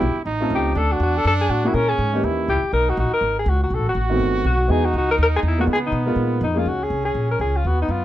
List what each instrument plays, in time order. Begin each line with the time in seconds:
Already playing: trumpet E4, alto saxophone G4
0.01 upright bass B1
0.16 muted upright bass stroke
0.25 upright bass A1, trumpet D#4
0.40 grand piano A3 C4 C#4 F4 A4
0.50 upright bass C#2
0.55 alto saxophone G4
0.75 upright bass D2, trumpet D4, alto saxophone A4
0.92 alto saxophone F#4
1.00 upright bass E2, alto saxophone F#4
1.18 alto saxophone A4
1.25 upright bass F#2, alto saxophone A4
1.41 alto saxophone G#4
1.49 upright bass A2, alto saxophone F#4
1.64 grand piano G#3 A#3 C#4 E4 G#4, trumpet E4, alto saxophone F#4
1.74 upright bass A#2, trumpet C#4, alto saxophone A#4
1.89 alto saxophone G#4
1.98 upright bass G#2
2.13 grand piano E3 A#3 C#4 D#4 G4
2.23 upright bass D#2, trumpet E4
2.48 upright bass C#2, alto saxophone G4
2.63 muted upright bass stroke
2.73 upright bass B1, trumpet D#4, alto saxophone A#4
2.90 alto saxophone F#4
2.97 upright bass A#1, alto saxophone F#4
3.11 alto saxophone A#4, muted upright bass stroke
3.21 upright bass G#1
3.39 alto saxophone G#4
3.46 upright bass C#2, alto saxophone F#4
3.63 alto saxophone F#4
3.70 upright bass B1, trumpet F#4
3.75 alto saxophone A4
3.79 upright bass A1
3.87 upright bass F#1, alto saxophone F#4
3.95 upright bass A1
4.10 grand piano D#3 A3 B3 C4 F#4
4.20 upright bass G1
4.44 upright bass B1, alto saxophone F#4
4.68 upright bass E2, grand piano E3 G#3 B3 D#4 F#4, trumpet D#4, alto saxophone G#4
4.85 alto saxophone F#4
4.94 upright bass C#2
4.98 alto saxophone F#4
5.11 alto saxophone A#4
5.18 upright bass D#2
5.23 alto saxophone A#4
5.36 alto saxophone G#4
5.43 upright bass E2
5.48 alto saxophone E4
5.58 grand piano G#3 A#3 B3 D#4 F4, alto saxophone F#4
5.67 upright bass C#3, trumpet B3
5.73 alto saxophone G#4
5.87 alto saxophone D#4
5.92 upright bass B2
6.06 grand piano G#3 B3 D#4 F4 A#4
6.16 upright bass A#2
6.41 upright bass F2, alto saxophone D#4
6.55 grand piano G#3 A#3 C#4 D#4 G#4, alto saxophone F4
6.66 upright bass C#2, trumpet C#4, alto saxophone F#4
6.83 alto saxophone G#4
6.90 upright bass C2
7.05 alto saxophone G#4
7.15 upright bass A#1
7.31 alto saxophone A#4
7.39 upright bass C#2, alto saxophone G#4
7.56 alto saxophone F4
7.64 upright bass D#2, trumpet B3, alto saxophone F#4
7.82 alto saxophone D#4
7.89 upright bass F#2, alto saxophone F4